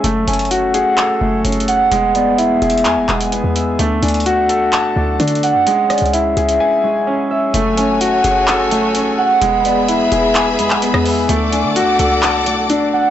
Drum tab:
HH |x-----------x--x--x--x--x-----------x-----------x-----------------------x---x---x---x-----------|x-----------x-----------x-----------x---x---x---x-----------x-----x-----x-----------x-----------|x-----------x--x--x--x--x-----------x-----------x-----------------------x---x---x---x-----------|x-----------x---x---x---x-----------x-----x-----------------------------------------------------|
CP |------------------------------------------------x-----------------------------------------------|------------------------------------------------x-----------x-----------------------------------|------------------------------------------------x-----------------------------------------------|------------------------------------------------------------------------------------------------|
SD |------------------------------------------------------------------------------------------------|------------------------------------------------------------------------------------------------|------------------------------------------------------------------------------------------------|------------r-----------------------------------------------------------------------------------|

HH |x-----------x-----------x-----------x-----------x-----------x-----------x-----------------------|x-----------x-----------x-----------x-----------x-----------x-----------x-----------o-----------|x-----------x-----------x-----------x-----------x-----------x-----------x-----------------------|
CP |------------------------------------------------x-----------------------------------------------|------------------------------------------------x-----------------x-----------------------------|------------------------------------------------x-----------------------------------------------|
SD |------------------------------------------------------------------------------------------------|------------------------------------------------------------------------------r-----------------|------------------------------------------------------------------------------------------------|